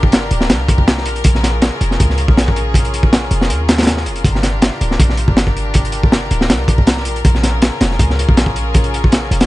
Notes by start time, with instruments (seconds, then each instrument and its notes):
Already playing: 808-style bass G1, string section D4 F4 G4 A#4
0.03 kick
0.12 snare, closed hi-hat
0.31 808-style bass D1, closed hi-hat
0.41 snare
0.50 808-style bass C2, snare, closed hi-hat
0.68 kick, closed hi-hat
0.78 kick
0.88 snare, closed hi-hat
0.98 snare
1.06 808-style bass A#1, closed hi-hat
1.16 closed hi-hat
1.24 808-style bass A#1, string section C#4 G#4, kick, closed hi-hat
1.35 snare
1.43 snare, closed hi-hat
1.62 snare, closed hi-hat
1.81 808-style bass F1, closed hi-hat
1.91 snare
2.00 808-style bass C#2, kick, closed hi-hat
2.10 snare
2.18 closed hi-hat
2.28 808-style bass A#1, kick
2.37 snare, closed hi-hat
2.48 kick
2.56 closed hi-hat
2.74 kick, closed hi-hat
2.85 closed hi-hat
2.94 closed hi-hat
3.03 kick
3.13 snare, closed hi-hat
3.31 808-style bass F1, closed hi-hat
3.41 snare
3.50 808-style bass D#2, closed hi-hat
3.69 snare, closed hi-hat
3.78 snare, closed hi-hat
3.83 snare, closed hi-hat
3.87 snare, closed hi-hat
3.97 snare
4.06 808-style bass F1, closed hi-hat
4.16 closed hi-hat
4.24 808-style bass G1, string section D4 G4 A#4, kick, closed hi-hat
4.35 snare
4.43 snare, closed hi-hat
4.62 snare, closed hi-hat
4.81 808-style bass D1, closed hi-hat
4.91 snare
5.00 808-style bass A#1, kick, closed hi-hat
5.10 snare
5.17 closed hi-hat
5.28 808-style bass G1, kick
5.37 snare, closed hi-hat
5.47 kick
5.57 closed hi-hat
5.74 kick, closed hi-hat
5.85 closed hi-hat
5.92 closed hi-hat
6.03 kick
6.12 snare, closed hi-hat
6.31 808-style bass D1, closed hi-hat
6.41 snare
6.50 808-style bass C2, snare, closed hi-hat
6.68 kick, closed hi-hat
6.78 kick
6.87 snare, closed hi-hat
6.97 snare
7.05 808-style bass A#1, closed hi-hat
7.16 closed hi-hat
7.25 808-style bass A#1, string section C#4 F4 G#4, kick, closed hi-hat
7.35 snare
7.43 snare, closed hi-hat
7.62 snare, closed hi-hat
7.81 808-style bass F1, snare, closed hi-hat
7.91 snare
7.99 808-style bass C#2, kick, closed hi-hat
8.10 snare
8.19 closed hi-hat
8.29 808-style bass A#1, kick
8.37 snare, closed hi-hat
8.46 kick
8.56 closed hi-hat
8.74 kick, closed hi-hat
8.84 closed hi-hat
8.94 closed hi-hat
9.04 kick
9.12 snare, closed hi-hat
9.31 808-style bass F1, closed hi-hat
9.41 snare, closed hi-hat